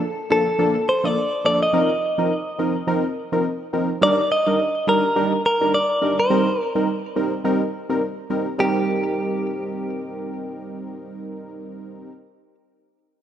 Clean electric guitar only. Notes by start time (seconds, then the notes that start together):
0.32 A4
0.89 C5
1.05 D5
1.46 D5
1.63 D#5
4.03 D5
4.32 D#5
4.89 A#4
5.46 A#4
5.74 D5
6.20 C5
6.61 A#4
8.60 G4